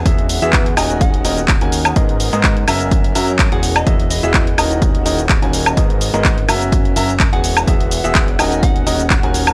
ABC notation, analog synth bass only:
X:1
M:4/4
L:1/16
Q:"Swing 16ths" 1/4=126
K:Elyd
V:1 name="Analog synth bass" clef=bass
E,,,3 E,,3 D,,,4 D,,,3 D,,3 | G,,,3 G,,3 F,,,4 F,,3 E,,,3 | E,,,3 E,,,3 D,,,4 D,,,3 D,,,3 | G,,,3 G,,,3 F,,,4 F,,,3 E,,,3 |
E,,,3 E,,,3 D,,,4 D,,,3 D,,,3 |]